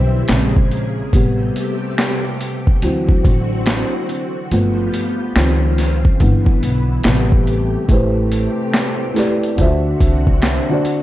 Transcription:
Already playing: upright bass B1, felt piano D3 E3 C4 B4 C5, string machine G3 C4 E4
0.28 upright bass A#1, string machine C#3 A#3 G#4, felt piano C#3 G#3 C4, finger snap, snare, closed hi-hat
0.56 kick
0.71 closed hi-hat
1.13 upright bass A1, string machine C3 A3 G4, felt piano C3 G3 B3, kick, closed hi-hat
1.56 closed hi-hat
1.98 finger snap, snare, closed hi-hat
2.41 closed hi-hat
2.67 kick
2.82 upright bass D2, string machine D3 C4 F#4, felt piano E3 F#3 C4, closed hi-hat
3.09 kick
3.25 upright bass A1, kick, closed hi-hat
3.66 finger snap, snare, closed hi-hat
4.09 closed hi-hat
4.51 upright bass G1, string machine F3 B3 G4, felt piano F3 A3 B3, closed hi-hat
4.94 closed hi-hat
5.35 upright bass C#2, string machine C#3 C4 F4, felt piano D#3 F3 C4, finger snap, snare, closed hi-hat
5.78 snare, closed hi-hat
6.05 kick
6.20 upright bass G1, felt piano D3 E3 B3, string machine E3 B3 E4, kick, closed hi-hat
6.46 kick
6.63 upright bass B1, closed hi-hat
7.04 upright bass A1, felt piano C3 G3 B3, string machine A3 G4, finger snap, snare, closed hi-hat
7.32 kick
7.47 closed hi-hat
7.88 upright bass A1, string machine C3 A3 G4, felt piano A3 E4 G4 B4, kick, closed hi-hat
7.93 felt piano C5
8.32 closed hi-hat
8.73 finger snap, snare, closed hi-hat
9.14 felt piano A3 E4 G4 B4, snare, closed hi-hat
9.19 felt piano D5
9.43 closed hi-hat
9.57 upright bass D2, felt piano D3 D4 F4 C5, string machine D3 C4 F#4, kick, closed hi-hat
9.61 felt piano E5
9.66 felt piano F#4
10.00 upright bass C2, kick, closed hi-hat
10.27 kick
10.42 finger snap, snare, closed hi-hat
10.69 felt piano D3 D4 F#4 C5
10.73 felt piano D5
10.85 closed hi-hat

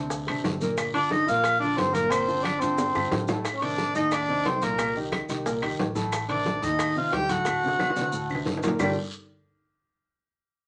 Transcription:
Already playing: upright bass D2, grand piano C3 C4 D4
0.10 high bongo, high conga, long guiro, maracas
0.27 upright bass A1, grand piano C3 C4 D4, high bongo, high conga, high timbale, claves, maracas
0.44 upright bass G1, high bongo, low bongo, high conga, low timbale, short guiro, maracas
0.61 grand piano A#2 A#3 A#4, high bongo, high conga, short guiro, maracas
0.77 high bongo, high timbale, long guiro, claves, maracas
0.94 grand piano D3 D4 F4, tenor saxophone D4, harmonica D5, high bongo, high conga, high timbale, maracas
1.10 tenor saxophone D#4, harmonica D#5, high bongo, high conga, low timbale, short guiro, maracas
1.27 upright bass A#1, grand piano A#2 A#3 A#4, tenor saxophone F4, harmonica F5, high conga, short guiro, maracas
1.43 high bongo, high conga, high timbale, long guiro, claves, maracas
1.60 grand piano D3 D4 F4, tenor saxophone D4, harmonica D5, high bongo, high conga, maracas
1.77 upright bass G1, tenor saxophone C4, harmonica C5, high bongo, low bongo, high conga, high timbale, low timbale, short guiro, maracas
1.94 grand piano A#2 A#3 A#4, tenor saxophone A#3, harmonica A#4, high bongo, high conga, high timbale, short guiro, maracas
2.10 grand piano A#2 A#3 A#4, tenor saxophone C4, harmonica C5, high bongo, high conga, high timbale, long guiro, claves, maracas
2.27 grand piano D3 D4 F4, high bongo, high conga, maracas
2.44 tenor saxophone D4, harmonica D5, high bongo, high conga, high timbale, low timbale, short guiro, claves, maracas
2.60 upright bass G2, grand piano D3 D4 F4, tenor saxophone C4, harmonica C5, high conga, high timbale, short guiro, maracas
2.78 high bongo, high conga, high timbale, long guiro, maracas
2.95 upright bass G2, grand piano D3 D4 F4, high bongo, high conga, claves, maracas
3.11 upright bass A2, low bongo, high conga, low timbale, short guiro, maracas
3.28 grand piano A2 A3 A4, low bongo, high conga, low timbale, short guiro, maracas
3.45 high bongo, high conga, high timbale, long guiro, claves, maracas
3.53 tenor saxophone C#4, harmonica C#5
3.61 grand piano C3 D#3 C4, tenor saxophone D4, harmonica D5, high bongo, high conga, high timbale, maracas
3.78 high bongo, high conga, low timbale, short guiro, maracas
3.95 upright bass D#2, grand piano A2 A3 A4, tenor saxophone D#4, harmonica D#5, high conga, short guiro, maracas
4.11 tenor saxophone D4, harmonica D5, high bongo, high conga, high timbale, long guiro, claves, maracas
4.28 grand piano C3 C4 D#4, high bongo, high conga, maracas
4.45 upright bass C2, tenor saxophone C4, harmonica C5, high bongo, low bongo, high conga, high timbale, low timbale, short guiro, maracas
4.62 grand piano A#2 A#3 A#4, tenor saxophone A#3, harmonica A#4, high bongo, high conga, high timbale, short guiro, maracas
4.79 grand piano A#2 A#3 A#4, high bongo, high timbale, long guiro, claves, maracas
4.95 grand piano D#3 D#4 G4, high bongo, high conga, maracas
5.12 high bongo, high conga, high timbale, low timbale, short guiro, claves, maracas
5.29 upright bass C2, grand piano D#3 D#4 G4, high timbale, short guiro, maracas
5.46 grand piano A#2 A#3 A#4, high bongo, high conga, long guiro, maracas
5.62 grand piano D#3 D#4 G4, high bongo, high conga, high timbale, claves, maracas
5.79 upright bass A1, high bongo, low bongo, high conga, low timbale, short guiro, maracas
5.95 grand piano A2 A3 A4, high bongo, high conga, short guiro, maracas
6.12 high bongo, high conga, high timbale, long guiro, claves, maracas
6.28 grand piano C3 D#3 C4, tenor saxophone D4, harmonica D5, high bongo, high conga, high timbale, maracas
6.46 high bongo, high conga, low timbale, short guiro, maracas
6.62 upright bass D#2, grand piano A2 A3 A4, tenor saxophone D#4, harmonica D#5, high conga, short guiro, maracas
6.79 high bongo, high conga, high timbale, long guiro, claves, maracas
6.96 grand piano C3 C4 D#4, tenor saxophone F4, harmonica F5, high bongo, high conga, maracas
7.12 upright bass D2, tenor saxophone G4, harmonica G5, high bongo, low bongo, high conga, high timbale, low timbale, short guiro, maracas
7.29 grand piano A2 A3 A4, tenor saxophone F#4, harmonica F#5, high bongo, high conga, high timbale, short guiro, maracas
7.45 grand piano A2 A3 A4, high bongo, high timbale, long guiro, claves, maracas
7.63 grand piano C3 C4 D4, high conga, maracas
7.68 high bongo
7.79 low bongo, high conga, high timbale, short guiro, claves, maracas
7.90 low bongo
7.96 upright bass D2, grand piano C3 C4 D4, high conga, high timbale, short guiro, maracas
8.01 low bongo
8.12 grand piano A2 A3 A4, high conga, long guiro, maracas
8.29 grand piano C3 C4 D4, high conga, claves, maracas
8.35 low bongo
8.46 upright bass G1, low bongo, high conga, low timbale, short guiro, maracas
8.57 low bongo
8.63 grand piano A#2 A#3 A#4, high conga, low timbale, short guiro, maracas
8.68 low bongo
8.79 upright bass G1, grand piano G3 D4 F4 G4 A#4 D5, tenor saxophone G3, harmonica G5, low bongo, low conga, low timbale, long guiro, claves, maracas

